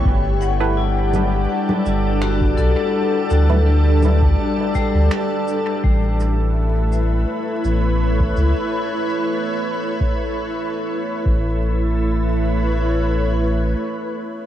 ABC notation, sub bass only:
X:1
M:4/4
L:1/16
Q:"Swing 16ths" 1/4=83
K:Amix
V:1 name="Sub bass" clef=bass
G,,,8 z2 G,,,4 B,,, z | z2 D,,6 z3 D,, z4 | A,,,8 z2 A,,,4 C,, z | z12 z2 A,,,2- |
A,,,12 z4 |]